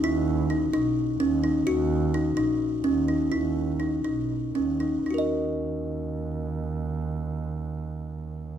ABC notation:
X:1
M:7/8
L:1/8
Q:1/4=121
K:Ebphr
V:1 name="Kalimba"
=E2 _E E2 D E | G2 E E2 D E | =E2 _E E2 D E | [EGBe]6- [EGBe]- |
[EGBe]6- [EGBe] |]
V:2 name="Double bass" clef=bass
E,,3 =B,,,2 E,,2 | E,,3 B,,,2 E,,2 | E,,3 =B,,,2 E,,2 | E,,6- E,,- |
E,,6- E,, |]